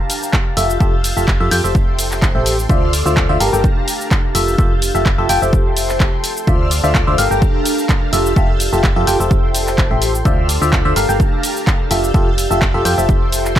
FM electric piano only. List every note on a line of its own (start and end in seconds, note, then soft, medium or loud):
0.57 0.77 F4 medium
0.57 0.77 G4 medium
0.57 0.77 A4 medium
0.57 0.77 E5 medium
0.80 0.95 F4 medium
0.80 0.95 G4 medium
0.80 0.95 A4 medium
0.80 0.95 E5 loud
1.17 1.30 F4 medium
1.17 1.30 G4 medium
1.17 1.30 A4 medium
1.17 1.30 E5 medium
1.40 1.50 F4 loud
1.40 1.50 G4 medium
1.40 1.50 A4 medium
1.40 1.50 E5 loud
1.51 1.62 F4 medium
1.51 1.62 G4 medium
1.51 1.62 A4 medium
1.51 1.62 G5 loud
1.64 2.32 G4 medium
1.64 2.32 A4 medium
1.64 2.32 C5 medium
1.64 2.32 E5 medium
2.35 2.57 G4 medium
2.35 2.57 A4 medium
2.35 2.57 C5 medium
2.35 2.57 E5 medium
2.70 2.92 F4 medium
2.70 2.92 C5 medium
2.70 2.92 D5 medium
2.70 2.92 E5 loud
3.06 3.26 F4 medium
3.06 3.26 C5 medium
3.06 3.26 D5 medium
3.06 3.26 E5 loud
3.29 3.38 F4 loud
3.29 3.38 C5 medium
3.29 3.38 D5 medium
3.29 3.38 E5 loud
3.40 3.50 G4 medium
3.40 3.50 A4 medium
3.40 3.50 A#4 medium
3.40 3.50 F5 loud
3.53 3.66 G4 medium
3.53 3.66 A4 medium
3.53 3.66 A#4 medium
3.53 3.66 G5 medium
4.35 4.55 F4 medium
4.35 4.55 G4 medium
4.35 4.55 A4 medium
4.35 4.55 E5 loud
4.58 4.73 F4 medium
4.58 4.73 G4 medium
4.58 4.73 A4 medium
4.58 4.73 E5 loud
4.95 5.08 F4 medium
4.95 5.08 G4 medium
4.95 5.08 A4 medium
4.95 5.08 E5 medium
5.18 5.28 F4 medium
5.18 5.28 G4 medium
5.18 5.28 A4 medium
5.18 5.28 E5 loud
5.29 5.40 F4 medium
5.29 5.40 G4 medium
5.29 5.40 A4 medium
5.29 5.40 G5 loud
5.42 6.10 G4 medium
5.42 6.10 A4 medium
5.42 6.10 C5 medium
5.42 6.10 E5 medium
6.47 6.70 F4 medium
6.47 6.70 C5 medium
6.47 6.70 D5 medium
6.47 6.70 E5 loud
6.84 7.04 F4 medium
6.84 7.04 C5 medium
6.84 7.04 D5 medium
6.84 7.04 E5 medium
7.07 7.16 F4 loud
7.07 7.16 C5 medium
7.07 7.16 D5 medium
7.07 7.16 E5 loud
7.18 7.28 G4 medium
7.18 7.28 A4 medium
7.18 7.28 A#4 medium
7.18 7.28 F5 loud
7.31 7.44 G4 medium
7.31 7.44 A4 medium
7.31 7.44 A#4 medium
7.31 7.44 G5 medium
8.13 8.33 F4 medium
8.13 8.33 G4 medium
8.13 8.33 A4 medium
8.13 8.33 E5 loud
8.36 8.51 F4 medium
8.36 8.51 G4 medium
8.36 8.51 A4 medium
8.36 8.51 E5 loud
8.73 8.86 F4 medium
8.73 8.86 G4 medium
8.73 8.86 A4 medium
8.73 8.86 E5 medium
8.96 9.06 F4 loud
8.96 9.06 G4 medium
8.96 9.06 A4 medium
8.96 9.06 E5 loud
9.07 9.18 F4 loud
9.07 9.18 G4 medium
9.07 9.18 A4 medium
9.07 9.18 G5 loud
9.20 9.88 G4 medium
9.20 9.88 A4 medium
9.20 9.88 C5 medium
9.20 9.88 E5 medium
9.91 10.13 G4 medium
9.91 10.13 A4 medium
9.91 10.13 C5 medium
9.91 10.13 E5 medium
10.25 10.48 F4 medium
10.25 10.48 C5 medium
10.25 10.48 D5 medium
10.25 10.48 E5 loud
10.62 10.81 F4 medium
10.62 10.81 C5 medium
10.62 10.81 D5 medium
10.62 10.81 E5 loud
10.85 10.94 F4 loud
10.85 10.94 C5 medium
10.85 10.94 D5 medium
10.85 10.94 E5 loud
10.96 11.06 G4 medium
10.96 11.06 A4 medium
10.96 11.06 A#4 medium
10.96 11.06 F5 loud
11.09 11.22 G4 medium
11.09 11.22 A4 medium
11.09 11.22 A#4 medium
11.09 11.22 G5 medium
11.91 12.11 F4 medium
11.91 12.11 G4 medium
11.91 12.11 A4 medium
11.91 12.11 E5 medium
12.14 12.29 F4 medium
12.14 12.29 G4 medium
12.14 12.29 A4 medium
12.14 12.29 E5 loud
12.51 12.64 F4 medium
12.51 12.64 G4 medium
12.51 12.64 A4 medium
12.51 12.64 E5 medium
12.74 12.84 F4 loud
12.74 12.84 G4 medium
12.74 12.84 A4 medium
12.74 12.84 E5 loud
12.85 12.96 F4 loud
12.85 12.96 G4 medium
12.85 12.96 A4 medium
12.85 12.96 G5 loud
12.98 13.59 G4 medium
12.98 13.59 A4 medium
12.98 13.59 C5 medium
12.98 13.59 E5 medium